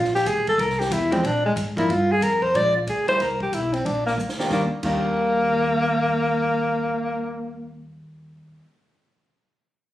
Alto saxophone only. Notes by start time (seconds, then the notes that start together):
Already playing: F4
0.15 G4
0.28 G#4
0.49 A4
0.60 A#4
0.80 G4
0.93 E4
1.13 C4
1.26 D4
1.46 G#3
1.78 E4
1.91 F4
2.12 G#4
2.23 A#4
2.43 C5
2.56 D5
2.77 F4
2.89 G#4
3.09 C5
3.22 A#4
3.42 G4
3.54 E4
3.73 C4
3.86 D4
4.07 A#3
4.52 A#3
4.85 A#3